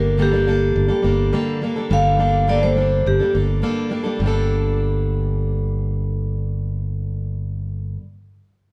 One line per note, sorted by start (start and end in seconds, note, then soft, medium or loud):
0.00 0.72 G1 medium
0.00 0.18 G3 medium
0.00 0.18 A#3 soft
0.00 0.19 D4 medium
0.00 0.18 A4 medium
0.00 0.20 A#4 medium
0.17 0.32 G2 medium
0.17 0.33 D3 medium
0.17 0.33 G3 medium
0.17 0.32 A#3 medium
0.17 0.32 D4 medium
0.17 0.30 A4 medium
0.22 1.32 G4 medium
0.31 0.44 G3 soft
0.31 0.46 A#3 soft
0.31 0.46 D4 soft
0.31 0.47 A4 soft
0.46 0.89 G3 medium
0.46 0.88 A#3 medium
0.46 0.87 D4 medium
0.46 0.87 A4 medium
0.76 0.89 G1 medium
0.88 1.01 G3 soft
0.88 1.02 A#3 soft
0.88 1.03 D4 soft
0.88 1.04 A4 medium
1.02 1.31 G1 medium
1.02 1.32 G3 medium
1.02 1.32 A#3 medium
1.02 1.33 D4 medium
1.02 1.34 A4 medium
1.32 1.62 G2 medium
1.32 1.62 D3 medium
1.32 1.61 G3 medium
1.32 1.62 A#3 medium
1.32 1.62 D4 medium
1.32 1.63 A4 medium
1.62 1.76 G3 medium
1.62 1.76 A#3 medium
1.62 1.76 D4 medium
1.62 1.75 A4 medium
1.76 1.89 G3 soft
1.76 1.90 A#3 soft
1.76 1.91 D4 soft
1.76 1.91 A4 soft
1.90 3.02 G1 medium
1.90 2.19 G2 medium
1.90 2.19 D3 medium
1.90 2.16 G3 medium
1.90 2.17 A#3 medium
1.90 2.19 D4 medium
1.90 2.19 A4 medium
1.90 2.48 F5 medium
2.17 2.47 G3 soft
2.17 2.48 A#3 soft
2.17 2.48 D4 medium
2.17 2.49 A4 medium
2.47 2.62 G2 medium
2.47 2.62 D3 medium
2.47 2.63 G3 medium
2.47 2.63 A#3 medium
2.47 2.62 D4 medium
2.47 2.61 A4 medium
2.47 2.62 D5 medium
2.62 2.75 G3 soft
2.62 2.76 A#3 soft
2.62 2.76 D4 soft
2.62 2.77 A4 soft
2.62 3.05 C5 medium
2.76 3.19 G3 soft
2.76 3.20 A#3 medium
2.76 3.20 D4 medium
2.76 3.18 A4 medium
3.06 3.19 G1 medium
3.06 3.34 G4 medium
3.20 3.32 G3 soft
3.20 3.33 A#3 soft
3.20 3.34 D4 soft
3.20 3.34 A4 soft
3.33 3.61 G1 medium
3.33 3.62 G3 soft
3.33 3.62 A#3 soft
3.33 3.62 D4 medium
3.33 3.63 A4 medium
3.62 3.91 G2 medium
3.62 3.91 D3 medium
3.62 3.89 G3 medium
3.62 3.90 A#3 medium
3.62 3.90 D4 medium
3.62 3.91 A4 medium
3.90 4.05 G3 medium
3.90 4.05 A#3 medium
3.90 4.03 D4 medium
3.90 4.02 A4 medium
4.04 4.20 G3 soft
4.04 4.20 A#3 soft
4.04 4.20 D4 soft
4.04 4.19 A4 soft
4.16 7.98 G2 medium
4.16 8.00 D3 medium
4.20 7.96 G1 medium
4.20 8.01 G3 medium
4.20 8.02 A#3 medium
4.26 8.03 D4 medium
4.26 8.04 A4 medium